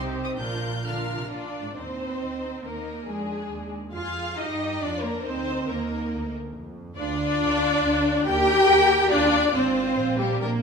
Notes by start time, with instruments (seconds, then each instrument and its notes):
Already playing: double bass section C2, cello section C3, viola section C4 D#4, violin section G4 C5
0.25 violin section D#6
0.39 double bass section A#1, cello section A#2, viola section D4 F4, violin section A#4 F5 G6
0.84 cello section D3, viola section D4 F4, violin section A#4 F5 F6
1.16 cello section C3
1.31 cello section A#2 D4, viola section D4, violin section F4 D5
1.63 cello section G#2
1.76 double bass section D#2, cello section C4, viola section C4, violin section D#4 C5
2.21 double bass section D2
2.64 double bass section D#2, cello section A#3, viola section A#3, violin section D#4 A#4
3.07 double bass section F2, cello section G#3, viola section G#3, violin section D4 G#4
3.51 double bass section D#2
3.94 double bass section F2, viola section F4, cello section F4, violin section G#4 F5
4.38 double bass section G2, viola section D#4, cello section D#4, violin section G4 D#5
4.82 double bass section F2, viola section D4, cello section D4, violin section F4 D5
5.02 viola section A#3, cello section A#3, violin section D4 A#4
5.23 double bass section D2, viola section C4, cello section C4, violin section D#4 C5
5.68 double bass section D#2, viola section A#3, cello section A#3, violin section D#4 A#4
6.12 double bass section D2
6.54 double bass section F2
6.97 double bass section D2, viola section D4, cello section D4, violin section F4 D5
7.39 double bass section D2
7.83 double bass section D2
8.27 double bass section D#2, cello section G4, viola section G4, violin section A#4 G5
8.70 double bass section D#2
9.11 double bass section D#2, cello section D4, viola section D4, violin section F4 D5
9.53 double bass section G#1, cello section C4, viola section C4, violin section F4 C5
9.98 double bass section A#1
10.18 cello section G3, viola section G3, violin section A#3 G4
10.41 double bass section A#1, cello section A#3, viola section A#3, violin section D4 A#4